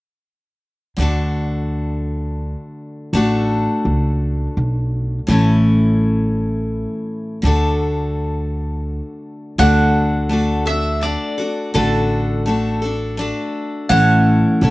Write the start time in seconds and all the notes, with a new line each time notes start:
0.97 D2 D3 A3 D4
1.01 F#4 A4
3.13 A1 A3 D4 F#4
3.17 A4
3.85 C#2
4.57 B1
5.27 A1 A2 E3 A3 C#4
5.31 E4 A4
7.42 D2 D3 A3 D4
7.46 F#4 A4
9.58 D2 D3 A3 D4 F#4 A4 F#5
10.29 A3 D4 F#4 A4
10.66 D4 F#4 A4 E5
11.01 A3 D4 F#4 A4 D5
11.38 D4 F#4 A4
11.74 A1 D3 A3 D4 F#4 A4
12.46 A3 D4 F#4 A4
12.82 D4 F#4 A4
13.17 A3 D4 F#4 A4
13.89 A1 A2 E3 A3 C#4 E4 A4 F#5
14.61 B1 A3 C#4 E4 A4